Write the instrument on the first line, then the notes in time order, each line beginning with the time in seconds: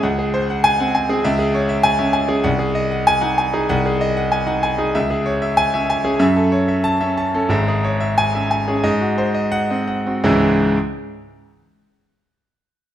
grand piano
0.03 C#2 F#5
0.19 G#4
0.34 C5
0.50 F#5
0.64 G#5
0.80 C4 F#5
0.95 G#5
1.09 C4 G#4
1.24 C#2 E5
1.39 G#4
1.54 C#5
1.69 E5
1.83 G#5
1.99 C#4 E5
2.13 G#5
2.28 C#4 G#4
2.44 C2 F#5
2.59 G#4
2.75 D#5
2.91 F#5
3.07 G#5
3.21 D#4 F#5
3.38 G#5
3.53 D#4 G#4
3.69 C2 F#5
3.86 G#4
4.01 D#5
4.17 F#5
4.32 G#5
4.47 D#4 F#5
4.63 G#5
4.78 D#4 G#4
4.95 C#2 E5
5.10 G#4
5.26 C#5
5.42 E5
5.57 G#5
5.74 C#4 E5
5.90 G#5
6.04 C#4 G#4
6.19 F#2 E5
6.36 A4
6.52 C#5
6.68 E5
6.84 A5
7.01 C#4 E5
7.17 A5
7.34 C#4 A4
7.49 G#1 G#2 E5
7.68 G#4
7.84 C#5
8.00 E5
8.18 G#5
8.35 C#4 E5
8.51 G#5
8.68 C#4 G#4
8.84 G#2 D#5
9.00 F#4
9.18 C5
9.34 D#5
9.52 F#5
9.70 C4 D#5
9.88 F#5
10.06 C4 F#4
10.24 C#2 G#2 E3 G#3 C#4 E4